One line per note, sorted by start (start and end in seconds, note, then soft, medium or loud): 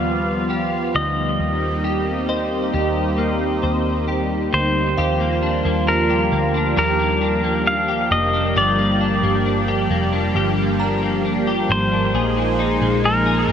0.00 0.91 D#2 medium
0.00 1.35 F3 medium
0.00 4.93 G3 medium
0.00 1.35 B3 medium
0.00 1.48 B3 medium
0.00 1.37 F4 medium
0.00 0.49 G4 medium
0.00 0.95 F5 medium
0.50 1.84 G4 medium
0.94 1.37 D2 medium
0.94 4.45 D#4 medium
0.94 4.04 D#5 medium
1.39 2.70 D#2 medium
1.39 4.94 A#3 medium
1.39 4.94 C4 medium
1.39 4.94 D#4 medium
1.39 4.94 G4 medium
1.84 2.73 G4 medium
2.29 3.62 C5 medium
2.29 4.90 D#5 medium
2.73 3.59 D#2 medium
2.73 4.07 G4 medium
3.18 5.20 A#3 medium
3.63 4.49 D#2 medium
3.63 4.98 C5 medium
4.08 4.98 G4 medium
4.53 4.95 D2 medium
4.53 5.20 D#4 medium
4.53 5.92 C5 medium
4.98 5.61 D#2 loud
4.98 8.52 F3 medium
4.98 8.52 G3 medium
4.98 13.52 A#3 medium
4.98 6.75 F4 medium
4.98 6.09 G4 medium
4.98 7.59 F5 medium
5.20 5.65 A#3 medium
5.43 5.87 D4 medium
5.65 6.29 D#2 loud
5.65 6.31 A#3 medium
5.87 6.54 D4 medium
5.87 6.77 A#4 medium
6.10 6.77 G4 medium
6.32 6.74 D2 medium
6.32 6.99 A#3 medium
6.54 7.21 D4 medium
6.76 8.07 D#2 loud
6.76 8.65 D#3 medium
6.76 12.10 G4 medium
6.76 7.88 G4 medium
6.76 7.70 A#4 medium
6.99 7.43 A#3 medium
7.21 7.66 D4 medium
7.44 8.10 A#3 medium
7.66 8.33 D4 medium
7.66 8.11 F5 loud
7.88 8.56 G4 medium
8.11 8.53 F1 medium
8.11 8.78 A#3 medium
8.11 8.57 D#5 loud
8.33 9.00 D4 medium
8.56 9.20 G1 loud
8.56 10.34 G2 medium
8.56 13.52 F3 medium
8.56 12.10 G3 medium
8.56 9.67 G4 medium
8.56 10.32 D5 medium
8.78 9.23 A#3 medium
9.01 9.44 D4 medium
9.23 9.87 G1 medium
9.23 9.90 A#3 medium
9.46 10.12 D4 medium
9.68 10.35 G4 medium
9.90 10.33 F1 medium
9.90 10.57 A#3 medium
10.13 10.79 D4 medium
10.35 11.65 G1 loud
10.35 12.14 G2 medium
10.35 11.46 G4 medium
10.58 11.02 A#3 medium
10.80 11.24 D4 medium
10.80 12.55 A#5 medium
11.02 11.69 A#3 medium
11.25 11.90 D4 medium
11.47 12.14 G4 medium
11.69 12.12 G#1 medium
11.69 12.36 A#3 medium
11.69 13.01 C5 medium
11.92 12.23 D4 medium
12.14 12.78 A#1 loud
12.14 13.52 A#2 medium
12.14 13.52 G#3 medium
12.14 13.52 D#4 medium
12.14 13.52 G#4 medium
12.14 13.25 G#4 medium
12.37 12.80 G#3 medium
12.59 13.03 D#4 medium
12.81 13.45 A#1 loud
12.81 13.47 G#3 medium
13.04 13.52 D#4 medium
13.04 13.52 A#4 medium
13.26 13.52 G#4 medium
13.48 13.52 G#1 medium
13.48 13.52 G#3 medium